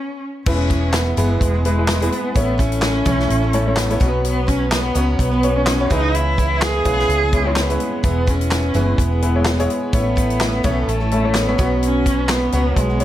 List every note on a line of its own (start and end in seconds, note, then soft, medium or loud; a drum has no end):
0.00 0.22 C#4 medium
0.46 1.14 E1 medium
0.46 0.68 E3 medium
0.46 1.14 E3 medium
0.46 1.10 G#3 medium
0.46 0.69 B3 medium
0.46 1.10 B3 medium
0.46 0.96 C#4 medium
0.46 0.69 E4 medium
0.46 1.10 E4 medium
0.46 0.70 G#4 medium
0.46 1.11 B4 medium
0.46 kick loud
0.46 crash medium
0.69 1.16 E3 medium
0.69 1.16 B3 medium
0.69 1.17 E4 medium
0.69 1.17 G#4 medium
0.69 kick medium
0.69 closed hi-hat medium
0.93 1.43 B3 medium
0.93 snare medium
0.93 clap medium
0.93 closed hi-hat medium
1.17 1.39 F#1 medium
1.17 1.54 E3 medium
1.17 1.60 G#3 medium
1.17 1.54 B3 medium
1.17 1.60 B3 medium
1.17 1.53 E4 medium
1.17 1.60 E4 medium
1.17 1.52 G#4 medium
1.17 1.60 B4 medium
1.17 closed hi-hat medium
1.41 2.08 E1 loud
1.41 1.65 G#3 medium
1.41 kick medium
1.41 closed hi-hat medium
1.53 2.02 B3 soft
1.53 2.02 E4 medium
1.53 2.00 G#4 medium
1.65 1.77 G#3 medium
1.65 2.13 G#3 medium
1.65 1.77 B3 medium
1.65 1.77 E4 medium
1.65 1.77 B4 medium
1.65 closed hi-hat medium
1.79 1.99 G#3 medium
1.79 1.99 B3 medium
1.79 1.99 E4 medium
1.79 1.99 B4 medium
1.88 snare loud
1.88 clap medium
1.88 closed hi-hat medium
2.01 2.32 G#3 medium
2.01 2.32 B3 medium
2.01 2.35 B3 soft
2.01 2.35 E4 medium
2.01 2.32 E4 medium
2.01 2.35 G#4 medium
2.01 2.32 B4 medium
2.01 closed hi-hat medium
2.12 2.35 B3 medium
2.12 closed hi-hat medium
2.35 3.03 A1 medium
2.35 3.03 A2 medium
2.35 2.57 A3 medium
2.35 3.00 A3 medium
2.35 2.61 B3 medium
2.35 2.57 C#4 medium
2.35 3.00 C#4 medium
2.35 2.58 E4 medium
2.35 3.00 E4 medium
2.35 2.59 A4 medium
2.35 3.00 C#5 medium
2.35 kick loud
2.35 closed hi-hat medium
2.58 3.05 A3 medium
2.58 3.06 C#4 medium
2.58 3.79 C#4 loud
2.58 3.05 E4 medium
2.58 3.06 A4 medium
2.58 kick medium
2.58 closed hi-hat medium
2.72 closed hi-hat medium
2.82 snare loud
2.82 clap medium
2.82 closed hi-hat medium
3.05 3.28 B1 medium
3.05 3.43 A2 medium
3.05 3.43 E3 medium
3.05 3.43 A3 medium
3.05 3.49 A3 medium
3.05 3.43 C#4 medium
3.05 3.49 C#4 medium
3.05 3.42 E4 loud
3.05 3.49 E4 medium
3.05 3.41 A4 medium
3.05 3.49 C#5 medium
3.05 kick medium
3.05 closed hi-hat medium
3.19 snare soft
3.30 3.98 A1 loud
3.30 closed hi-hat medium
3.42 3.90 A3 soft
3.42 3.90 C#4 medium
3.42 3.89 E4 medium
3.42 3.88 A4 medium
3.53 3.66 A3 medium
3.53 3.66 C#4 medium
3.53 3.66 E4 medium
3.53 3.66 C#5 medium
3.53 closed hi-hat medium
3.67 3.88 A3 medium
3.67 3.88 C#4 medium
3.67 3.88 E4 medium
3.67 3.88 C#5 medium
3.76 4.25 B3 medium
3.76 snare medium
3.76 clap medium
3.76 closed hi-hat medium
3.89 4.00 A3 medium
3.89 4.01 A3 medium
3.89 3.99 C#4 medium
3.89 4.00 C#4 medium
3.89 4.00 E4 medium
3.89 4.02 E4 medium
3.89 4.00 A4 medium
3.89 4.01 C#5 medium
3.89 closed hi-hat medium
4.00 4.92 B1 medium
4.00 4.48 B2 medium
4.00 4.69 B2 medium
4.00 4.46 F#3 loud
4.00 4.47 B3 medium
4.00 4.87 B3 medium
4.00 4.48 C#4 medium
4.00 4.87 C#4 medium
4.00 4.87 F#4 medium
4.00 4.48 B4 loud
4.00 4.87 C#5 medium
4.00 kick loud
4.00 closed hi-hat medium
4.25 4.49 B3 loud
4.25 closed hi-hat medium
4.47 4.94 F#3 medium
4.47 4.95 B3 medium
4.47 4.72 C#4 loud
4.47 4.95 C#4 medium
4.47 4.96 B4 medium
4.47 kick medium
4.47 closed hi-hat medium
4.72 5.16 B3 medium
4.72 snare medium
4.72 clap medium
4.72 closed hi-hat medium
4.95 5.18 C#2 medium
4.95 5.32 B2 medium
4.95 5.32 F#3 medium
4.95 5.38 B3 medium
4.95 5.32 B3 medium
4.95 5.31 C#4 medium
4.95 5.38 C#4 medium
4.95 5.38 F#4 medium
4.95 5.30 B4 loud
4.95 5.39 C#5 medium
4.95 closed hi-hat medium
5.19 5.87 B1 loud
5.19 5.58 B3 loud
5.19 kick medium
5.19 closed hi-hat medium
5.31 5.81 B3 medium
5.31 5.79 C#4 soft
5.31 5.79 B4 medium
5.43 5.55 B3 medium
5.43 5.55 C#4 medium
5.43 5.55 F#4 medium
5.43 5.55 C#5 medium
5.43 closed hi-hat medium
5.57 5.78 B3 medium
5.57 5.91 C#4 medium
5.57 5.78 C#4 medium
5.57 5.78 F#4 medium
5.57 5.78 C#5 medium
5.66 snare loud
5.66 clap medium
5.66 closed hi-hat medium
5.79 5.91 B3 medium
5.79 5.90 B3 soft
5.79 5.90 C#4 medium
5.79 5.91 F#4 medium
5.79 5.90 B4 medium
5.79 5.91 C#5 medium
5.90 6.81 C#2 loud
5.90 6.38 C#3 medium
5.90 6.58 C#3 medium
5.90 6.37 E3 medium
5.90 6.76 G#3 medium
5.90 6.38 B3 medium
5.90 6.76 C#4 medium
5.90 6.17 D#4 loud
5.90 6.38 E4 loud
5.90 6.76 E4 medium
5.90 6.39 G#4 loud
5.90 6.76 B4 medium
5.90 kick loud
5.90 closed hi-hat medium
6.14 6.64 E4 loud
6.14 closed hi-hat medium
6.37 6.85 E3 medium
6.37 6.85 B3 medium
6.37 6.85 E4 medium
6.37 6.86 G#4 medium
6.37 kick medium
6.37 closed hi-hat medium
6.62 7.60 G#4 loud
6.62 snare loud
6.62 clap medium
6.62 closed hi-hat medium
6.85 7.07 B1 medium
6.85 7.22 C#3 medium
6.85 7.22 E3 medium
6.85 7.28 G#3 medium
6.85 7.22 B3 medium
6.85 7.28 C#4 medium
6.85 7.28 E4 medium
6.85 7.22 E4 loud
6.85 7.20 G#4 medium
6.85 7.28 B4 medium
6.85 kick medium
6.85 closed hi-hat medium
6.99 snare soft
7.09 7.76 C#2 loud
7.09 closed hi-hat medium
7.22 7.70 B3 soft
7.22 7.69 E4 medium
7.22 7.69 G#4 medium
7.33 7.45 G#3 medium
7.33 7.45 C#4 medium
7.33 7.45 E4 medium
7.33 7.45 G#4 medium
7.33 kick medium
7.33 closed hi-hat medium
7.46 7.67 G#3 medium
7.46 7.67 C#4 medium
7.46 7.67 E4 medium
7.46 7.67 C#5 medium
7.56 8.05 B3 medium
7.56 snare medium
7.56 clap medium
7.56 closed hi-hat medium
7.69 8.00 G#3 medium
7.69 8.02 B3 medium
7.69 8.00 C#4 medium
7.69 8.03 E4 medium
7.69 8.00 E4 medium
7.69 8.03 G#4 medium
7.69 8.01 B4 medium
7.69 closed hi-hat medium
7.80 closed hi-hat medium
8.03 8.71 E1 medium
8.03 8.25 E3 medium
8.03 8.71 E3 medium
8.03 8.68 G#3 medium
8.03 8.26 B3 medium
8.03 8.68 B3 medium
8.03 8.31 B3 medium
8.03 8.68 E4 medium
8.03 8.27 E4 medium
8.03 8.27 G#4 medium
8.03 8.68 B4 medium
8.03 kick loud
8.03 closed hi-hat medium
8.27 8.73 E3 medium
8.27 8.73 B3 medium
8.27 8.94 C#4 medium
8.27 8.74 E4 medium
8.27 8.74 G#4 medium
8.27 kick medium
8.27 closed hi-hat medium
8.41 closed hi-hat medium
8.51 snare medium
8.51 clap medium
8.51 closed hi-hat medium
8.74 8.97 F#1 medium
8.74 9.11 E3 medium
8.74 9.17 G#3 medium
8.74 9.11 B3 medium
8.74 9.18 B3 medium
8.74 9.11 E4 medium
8.74 9.18 E4 medium
8.74 9.10 G#4 medium
8.74 9.18 B4 medium
8.74 closed hi-hat medium
8.94 9.02 C#4 medium
8.98 9.66 E1 loud
8.98 9.70 B3 medium
8.98 kick medium
8.98 closed hi-hat medium
9.11 9.59 B3 soft
9.11 9.59 E4 medium
9.11 9.57 G#4 medium
9.22 9.34 G#3 medium
9.22 9.34 B3 medium
9.22 9.34 E4 medium
9.22 9.34 B4 medium
9.22 closed hi-hat medium
9.35 9.56 G#3 medium
9.35 9.56 B3 medium
9.35 9.56 E4 medium
9.35 9.56 C#5 medium
9.45 snare loud
9.45 clap medium
9.45 closed hi-hat medium
9.58 9.90 G#3 medium
9.58 9.90 B3 medium
9.58 9.93 B3 soft
9.58 9.93 E4 medium
9.58 9.90 E4 medium
9.58 9.93 G#4 medium
9.58 9.90 C#5 loud
9.58 closed hi-hat medium
9.70 closed hi-hat medium
9.93 10.60 A1 medium
9.93 10.60 A2 medium
9.93 10.14 A3 medium
9.93 10.57 A3 medium
9.93 10.91 B3 medium
9.93 10.15 C#4 medium
9.93 10.57 C#4 medium
9.93 10.57 E4 medium
9.93 10.16 E4 medium
9.93 10.17 A4 medium
9.93 10.57 C#5 medium
9.93 kick loud
9.93 closed hi-hat medium
10.16 10.63 A3 medium
10.16 10.64 C#4 medium
10.16 10.63 E4 medium
10.16 10.63 A4 medium
10.16 kick medium
10.16 closed hi-hat medium
10.30 closed hi-hat medium
10.40 snare loud
10.40 clap medium
10.40 closed hi-hat medium
10.63 10.86 B1 medium
10.63 11.00 A2 medium
10.63 11.01 E3 medium
10.63 11.01 A3 medium
10.63 11.07 A3 medium
10.63 11.01 C#4 medium
10.63 11.07 C#4 medium
10.63 11.00 E4 medium
10.63 11.07 E4 medium
10.63 10.99 A4 medium
10.63 11.07 C#5 loud
10.63 kick loud
10.63 closed hi-hat medium
10.87 11.55 A1 loud
10.87 11.37 A3 loud
10.87 closed hi-hat medium
11.00 11.48 A3 soft
11.00 11.48 C#4 medium
11.00 11.47 E4 medium
11.00 11.46 A4 medium
11.11 11.23 A3 medium
11.11 11.23 C#4 medium
11.11 11.23 E4 medium
11.11 11.23 A4 medium
11.11 closed hi-hat medium
11.24 11.45 A3 medium
11.24 11.45 C#4 medium
11.24 11.45 E4 medium
11.24 11.45 C#5 medium
11.34 11.72 B3 loud
11.34 snare loud
11.34 clap medium
11.34 closed hi-hat medium
11.47 11.59 A3 medium
11.47 11.58 A3 medium
11.47 11.57 C#4 medium
11.47 11.58 C#4 medium
11.47 11.59 E4 medium
11.47 11.58 A4 medium
11.47 11.58 C#5 medium
11.58 12.49 B1 medium
11.58 12.06 B2 medium
11.58 12.26 B2 medium
11.58 12.04 F#3 loud
11.58 12.44 B3 medium
11.58 12.05 B3 loud
11.58 12.44 C#4 medium
11.58 12.06 C#4 loud
11.58 12.44 F#4 medium
11.58 12.06 F#4 loud
11.58 12.44 C#5 medium
11.58 kick loud
11.58 closed hi-hat medium
11.83 12.33 C#4 loud
11.83 closed hi-hat medium
12.05 12.52 F#3 medium
12.05 12.53 B3 medium
12.05 12.53 C#4 medium
12.05 12.53 F#4 medium
12.05 kick medium
12.05 closed hi-hat medium
12.29 12.79 B3 loud
12.29 snare loud
12.29 clap medium
12.29 closed hi-hat medium
12.52 12.75 C#2 medium
12.52 12.90 B2 medium
12.52 12.90 F#3 medium
12.52 12.96 B3 medium
12.52 12.90 B3 loud
12.52 12.96 C#4 medium
12.52 12.90 C#4 medium
12.52 12.96 F#4 medium
12.52 12.88 F#4 medium
12.52 12.96 C#5 medium
12.52 closed hi-hat medium
12.76 13.04 B1 loud
12.76 13.04 G#3 loud
12.76 kick medium
12.76 closed hi-hat medium
12.90 13.04 B3 soft
12.90 13.04 C#4 medium
12.90 13.04 F#4 medium
13.00 13.04 B3 medium
13.00 13.04 C#4 medium
13.00 13.04 F#4 medium
13.00 13.04 C#5 medium
13.00 closed hi-hat medium